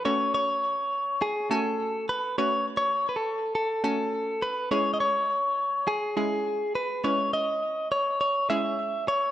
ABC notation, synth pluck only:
X:1
M:4/4
L:1/8
Q:1/4=103
K:C#m
V:1 name="Synth pluck"
[A,CFA]2 z3 [A,CFg]2 z | [A,CFB]2 z3 [A,CFg]2 z | [G,CEG]2 z3 [G,CEG]2 z | [G,CEB]2 z3 [G,CEG]2 z |]